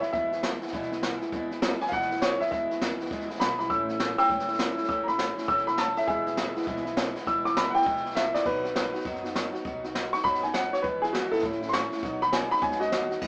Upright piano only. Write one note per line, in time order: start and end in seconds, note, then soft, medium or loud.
0.01 0.11 E5 medium
0.13 0.42 E5 medium
1.82 1.92 G#5 loud
1.89 1.91 F5 medium
1.93 2.21 F#5 loud
2.22 2.40 C#5 medium
2.40 2.50 E5 medium
2.51 2.80 E5 medium
3.40 3.57 B5 loud
3.59 3.70 B5 medium
3.70 4.17 E6 medium
4.18 4.46 G5 medium
4.18 4.47 E6 loud
4.89 5.07 E6 medium
5.03 5.05 A#5 medium
5.08 5.47 B5 medium
5.48 5.66 E6 medium
5.67 5.78 B5 medium
5.79 5.97 A5 medium
5.97 6.07 E5 medium
6.07 6.93 G#4 medium
6.07 6.95 E5 loud
7.27 7.45 E6 medium
7.45 7.56 D6 medium
7.57 7.75 B5 medium
7.70 7.72 F#5 medium
7.75 8.15 G5 loud
8.15 8.34 E5 medium
8.34 8.45 D5 medium
8.46 9.04 B4 medium
10.13 10.24 C#6 loud
10.24 10.42 B5 loud
10.43 10.54 G#5 medium
10.54 10.72 F#5 medium
10.73 10.84 C#5 medium
10.82 11.01 B4 medium
11.02 11.13 G#4 loud
11.13 11.31 F#4 medium
11.31 11.43 A4 loud
11.69 11.72 C6 medium
11.73 12.20 C#6 loud
12.22 12.33 B5 loud
12.32 12.51 G#5 medium
12.51 12.62 B5 loud
12.62 12.80 G#5 loud
12.80 13.19 F#4 medium
12.80 13.21 D#5 loud